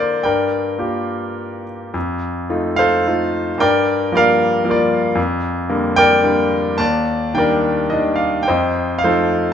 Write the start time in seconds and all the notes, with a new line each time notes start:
Already playing: D3 A#3 D4 A4 A#4 C5 D5 F5
0.23 G2 A#4 D5 G5
0.79 A#3 F4 G4
1.94 F2
2.50 A3 D#4 F4
2.76 A4 C5 F5
3.07 A3 D#4 F4
3.58 G2 A#4 D5 G5
4.12 F3 G3 A#3 D5
4.17 A#4 F5
4.64 F3 G3 A#3
4.70 F4 A#4 D5
5.15 F2
5.69 D3 G3 A#3
5.96 A#4 D5 G5
6.24 D3 G3 A#3
6.78 D#2 D5 A5
7.34 D#3 G3 D4 G5
7.38 A#4 D5
7.90 D#3 G3 D4 D#5
8.16 F5
8.43 G5
8.48 F2 C5 D#5
8.98 F5
9.04 F3 A3 D#4 A4 C5